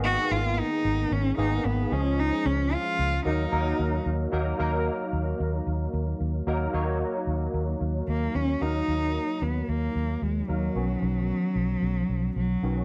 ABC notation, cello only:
X:1
M:4/4
L:1/8
Q:1/4=112
K:Ebm
V:1 name="Cello"
G F E2 D E C D | E D F2 E3 z | z8 | z6 B, D |
E3 C B,2 A, G,- | G,6 ^F,2 |]